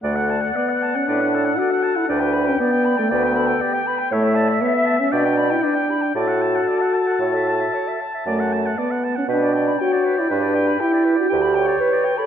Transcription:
<<
  \new Staff \with { instrumentName = "Oboe" } { \time 4/4 \key d \major \tempo 4 = 118 fis''1 | g''1 | e''2 g''2 | a''1~ |
a''4. r8 g''2~ | g''1 | }
  \new Staff \with { instrumentName = "Clarinet" } { \time 4/4 \key d \major d''16 fis''16 a''16 fis''16 d''16 fis''16 a''16 fis''16 d''16 fis''16 a''16 fis''16 d''16 fis''16 a''16 fis''16 | d''16 g''16 b''16 g''16 d''16 g''16 b''16 g''16 d''16 g''16 b''16 g''16 d''16 g''16 b''16 g''16 | cis''16 e''16 a''16 e''16 cis''16 e''16 a''16 e''16 d''16 g''16 b''16 g''16 d''16 g''16 b''16 g''16 | d''16 fis''16 a''16 fis''16 d''16 fis''16 a''16 fis''16 cis''16 e''16 a''16 e''16 cis''16 e''16 a''16 e''16 |
d''16 fis''16 a''16 fis''16 d''16 fis''16 a''16 fis''16 b'16 d''16 g''16 b''16 g''16 d''16 b'16 d''16 | b'16 d''16 g''16 b''16 g''16 d''16 b'16 d''16 g''16 b''16 g''16 d''16 b'16 d''16 g''16 b''16 | }
  \new Staff \with { instrumentName = "Flute" } { \time 4/4 \key d \major d''2 b'8 a'8 a'4 | b'4 d''4 b'8 a'8 g'8 b'8 | cis''8 d''8 e''4 d''4 b'8 g'8 | a'2.~ a'8 r8 |
r2 b'8 d''8 cis''4 | b'4 g'4 b'8 cis''4. | }
  \new Staff \with { instrumentName = "French horn" } { \time 4/4 \key d \major a4 b8. cis'16 d'4 fis'8. e'16 | d'8. cis'16 b8. a16 b4. r8 | a4 b8. cis'16 d'8. e'16 d'4 | fis'2.~ fis'8 r8 |
a4 b8. cis'16 d'4 fis'8. e'16 | d'4 e'8. fis'16 g'4 b'8. a'16 | }
  \new Staff \with { instrumentName = "Bassoon" } { \clef bass \time 4/4 \key d \major d,4 r4 a,4 r4 | d,4 r4 d,4 r4 | a,4 r4 b,4 r4 | a,4 r4 a,4 r4 |
fis,4 r4 b,4 r4 | g,4 r4 d,4 r4 | }
>>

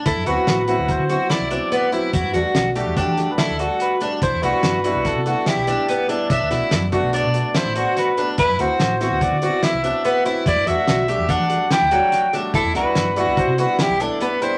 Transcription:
<<
  \new Staff \with { instrumentName = "Soprano saxophone" } { \time 5/4 \key d \mixolydian \tempo 4 = 144 a'8 b'4. c''4 d''4. r8 | fis'4. r8 \tuplet 3/2 { g'4~ g'16 b'16 } a'4 b'8. r16 | c''8 b'4. a'4 g'4. r8 | e''4. r8 d''4 c''4 b'8. r16 |
b'8 c''4. d''4 e''4. r8 | d''8 e''4. fis''4 g''4. r8 | a'8 b'4. c''8 b'8 g'8 a'8 b'8 c''8 | }
  \new Staff \with { instrumentName = "Twelve-string acoustic guitar" } { \time 5/4 \key d \mixolydian e'8 fis'4 fis'4 fis'8 e'8 d'8 b8 e'8 | e'8 fis'4 g'8 d'4 e'8 fis'4 d'8 | e'8 fis'4 fis'4 fis'8 e'8 d'8 b8 d'8 | d'8 e'4 fis'8 d'4 e'8 fis'4 d'8 |
e'8 fis'4 fis'4 fis'8 e'8 d'8 b8 e'8 | e'8 fis'4 g'8 d'4 e'8 fis4 d'8 | e'8 fis'4 fis'4 fis'8 e'8 d'8 b8 e'8 | }
  \new Staff \with { instrumentName = "Grand piano" } { \time 5/4 \key d \mixolydian r8 <fis b c' e'>4 <fis b c' e'>4 <fis b c' e'>4 <fis b c' e'>4 <fis b c' e'>8 | r8 <g a d' fis'>4 <g a d' fis'>4 <g a d' fis'>4 <g a d' fis'>4 <g a d' fis'>8 | r8 <g b d' e'>4 <g b d' e'>4 <g b d' e'>4 <g b d' e'>4 <g b d' e'>8 | r8 <a b d' fis'>4 <a b d' fis'>4 <a b d' fis'>4 <a b d' fis'>4 <a b d' fis'>8 |
r8 <a c' e' fis'>4 <b c' e' fis'>4 <b c' e' fis'>4 <b c' e' fis'>4 <b c' e' fis'>8 | r8 <g a d' fis'>4 <g a d' fis'>4 <g a d' fis'>4 <fis g a d'>4 <g a d' fis'>8 | r8 <g b d' e'>4 <g b d' e'>4 <g b d' e'>4 <g b d' e'>4 <g b d' g'>8 | }
  \new Staff \with { instrumentName = "Fingered electric bass" } { \clef bass \time 5/4 \key d \mixolydian d,16 fis,16 d,16 r16 a,,8. d,8 d8 r8 c,8 r4 r16 | e,16 g,16 e,16 r16 b,,8. e,8 e8 r8 d,8 r4 r16 | c,16 e,16 c,16 r16 g,8. c,8 c8 r8 b,,8 r4 r16 | b,,16 d,16 b,,16 r16 fis,8. b,,8 b,8 r8 a,,8 r4 r16 |
d,16 fis,16 d,16 r16 a,,8. d,8 d8 r8 c,8 r4 r16 | e,16 g,16 e,16 r16 b,,8. e,8 e8 r8 d,8 r4 r16 | c,16 e,16 c,16 r16 g,8. c,8 c8 r8 b,,8 r4 r16 | }
  \new DrumStaff \with { instrumentName = "Drums" } \drummode { \time 5/4 <hh bd>8 hh8 <hh sn>8 hh8 <hh bd>8 hh8 <hh sn>8 hh8 hh8 hh8 | <hh bd>8 hh8 <hh sn>8 hh8 <hh bd>8 <hh sn>8 <hh sn>8 hh8 hh8 hh8 | <hh bd>8 hh8 <hh sn>8 hh8 <hh bd sn>8 hh8 <hh sn>8 <hh sn>8 hh8 hh8 | <hh bd>8 <hh sn>8 <hh sn>8 <hh bd>8 hh8 hh8 <hh sn>8 hh8 <hh sn>8 hh8 |
<hh bd>8 hh8 <hh sn>8 <hh sn>8 <hh bd>8 hh8 <hh sn>8 hh8 hh8 hh8 | <hh bd>8 hh8 <hh sn>8 hh8 <hh bd>8 hh8 <hh sn>8 hh8 <hh sn>8 <hh sn>8 | <hh bd>8 <hh sn>8 <hh sn>8 hh8 <hh bd>8 hh8 <hh sn>8 hh8 hh8 hh8 | }
>>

